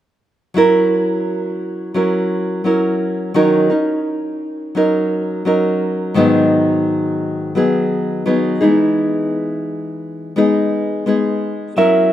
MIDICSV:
0, 0, Header, 1, 3, 480
1, 0, Start_track
1, 0, Tempo, 700607
1, 379, Time_signature, 4, 2, 24, 8
1, 8308, End_track
2, 0, Start_track
2, 0, Title_t, "Electric slide guitar"
2, 0, Program_c, 0, 29
2, 8069, Note_on_c, 0, 76, 81
2, 8308, Note_off_c, 0, 76, 0
2, 8308, End_track
3, 0, Start_track
3, 0, Title_t, "Nylon-string guitar"
3, 0, Program_c, 1, 24
3, 371, Note_on_c, 1, 54, 63
3, 380, Note_on_c, 1, 61, 65
3, 387, Note_on_c, 1, 64, 72
3, 395, Note_on_c, 1, 70, 76
3, 1328, Note_off_c, 1, 54, 0
3, 1331, Note_on_c, 1, 54, 53
3, 1333, Note_off_c, 1, 64, 0
3, 1335, Note_off_c, 1, 61, 0
3, 1338, Note_on_c, 1, 61, 55
3, 1341, Note_on_c, 1, 64, 58
3, 1344, Note_off_c, 1, 70, 0
3, 1347, Note_on_c, 1, 70, 54
3, 1806, Note_off_c, 1, 54, 0
3, 1809, Note_on_c, 1, 54, 49
3, 1814, Note_off_c, 1, 61, 0
3, 1814, Note_off_c, 1, 64, 0
3, 1817, Note_on_c, 1, 61, 52
3, 1822, Note_on_c, 1, 64, 54
3, 1823, Note_off_c, 1, 70, 0
3, 1826, Note_on_c, 1, 70, 53
3, 2290, Note_on_c, 1, 51, 70
3, 2291, Note_off_c, 1, 54, 0
3, 2294, Note_off_c, 1, 61, 0
3, 2294, Note_on_c, 1, 54, 66
3, 2297, Note_off_c, 1, 64, 0
3, 2297, Note_on_c, 1, 61, 68
3, 2299, Note_off_c, 1, 70, 0
3, 2300, Note_on_c, 1, 63, 72
3, 2301, Note_on_c, 1, 70, 70
3, 2524, Note_off_c, 1, 70, 0
3, 2532, Note_off_c, 1, 63, 0
3, 2532, Note_on_c, 1, 70, 38
3, 2535, Note_off_c, 1, 51, 0
3, 2536, Note_off_c, 1, 54, 0
3, 2538, Note_off_c, 1, 61, 0
3, 2541, Note_on_c, 1, 63, 40
3, 2548, Note_on_c, 1, 61, 34
3, 3253, Note_off_c, 1, 61, 0
3, 3253, Note_on_c, 1, 54, 57
3, 3256, Note_off_c, 1, 70, 0
3, 3261, Note_on_c, 1, 61, 53
3, 3263, Note_off_c, 1, 63, 0
3, 3266, Note_on_c, 1, 63, 62
3, 3270, Note_on_c, 1, 70, 58
3, 3732, Note_off_c, 1, 54, 0
3, 3733, Note_off_c, 1, 61, 0
3, 3734, Note_on_c, 1, 54, 52
3, 3741, Note_off_c, 1, 70, 0
3, 3742, Note_on_c, 1, 61, 54
3, 3743, Note_off_c, 1, 63, 0
3, 3745, Note_on_c, 1, 63, 52
3, 3750, Note_on_c, 1, 70, 59
3, 4209, Note_on_c, 1, 44, 64
3, 4215, Note_on_c, 1, 51, 69
3, 4218, Note_off_c, 1, 54, 0
3, 4221, Note_off_c, 1, 61, 0
3, 4221, Note_on_c, 1, 54, 76
3, 4225, Note_off_c, 1, 70, 0
3, 4226, Note_on_c, 1, 59, 69
3, 4227, Note_off_c, 1, 63, 0
3, 4230, Note_on_c, 1, 63, 69
3, 4234, Note_on_c, 1, 68, 73
3, 5165, Note_off_c, 1, 54, 0
3, 5173, Note_on_c, 1, 54, 57
3, 5175, Note_off_c, 1, 44, 0
3, 5176, Note_off_c, 1, 59, 0
3, 5179, Note_on_c, 1, 59, 63
3, 5182, Note_off_c, 1, 63, 0
3, 5185, Note_off_c, 1, 68, 0
3, 5185, Note_on_c, 1, 63, 58
3, 5188, Note_on_c, 1, 68, 65
3, 5648, Note_off_c, 1, 54, 0
3, 5656, Note_on_c, 1, 54, 57
3, 5659, Note_off_c, 1, 59, 0
3, 5662, Note_on_c, 1, 59, 58
3, 5664, Note_off_c, 1, 63, 0
3, 5667, Note_on_c, 1, 63, 57
3, 5670, Note_off_c, 1, 68, 0
3, 5673, Note_on_c, 1, 68, 57
3, 5888, Note_off_c, 1, 68, 0
3, 5895, Note_off_c, 1, 63, 0
3, 5896, Note_on_c, 1, 68, 59
3, 5899, Note_off_c, 1, 54, 0
3, 5901, Note_off_c, 1, 59, 0
3, 5903, Note_on_c, 1, 63, 60
3, 5909, Note_on_c, 1, 59, 55
3, 5915, Note_on_c, 1, 56, 52
3, 5917, Note_off_c, 1, 51, 0
3, 5920, Note_on_c, 1, 52, 46
3, 7089, Note_off_c, 1, 56, 0
3, 7094, Note_off_c, 1, 59, 0
3, 7097, Note_on_c, 1, 56, 61
3, 7099, Note_off_c, 1, 68, 0
3, 7101, Note_off_c, 1, 63, 0
3, 7103, Note_on_c, 1, 59, 61
3, 7109, Note_on_c, 1, 63, 65
3, 7113, Note_on_c, 1, 68, 64
3, 7129, Note_off_c, 1, 52, 0
3, 7569, Note_off_c, 1, 56, 0
3, 7575, Note_off_c, 1, 59, 0
3, 7577, Note_on_c, 1, 56, 47
3, 7579, Note_off_c, 1, 63, 0
3, 7583, Note_on_c, 1, 59, 56
3, 7586, Note_off_c, 1, 68, 0
3, 7587, Note_on_c, 1, 63, 63
3, 7594, Note_on_c, 1, 68, 60
3, 8057, Note_off_c, 1, 56, 0
3, 8060, Note_on_c, 1, 54, 65
3, 8062, Note_off_c, 1, 59, 0
3, 8064, Note_off_c, 1, 63, 0
3, 8065, Note_on_c, 1, 61, 68
3, 8067, Note_on_c, 1, 64, 72
3, 8068, Note_off_c, 1, 68, 0
3, 8072, Note_on_c, 1, 70, 69
3, 8308, Note_off_c, 1, 54, 0
3, 8308, Note_off_c, 1, 61, 0
3, 8308, Note_off_c, 1, 64, 0
3, 8308, Note_off_c, 1, 70, 0
3, 8308, End_track
0, 0, End_of_file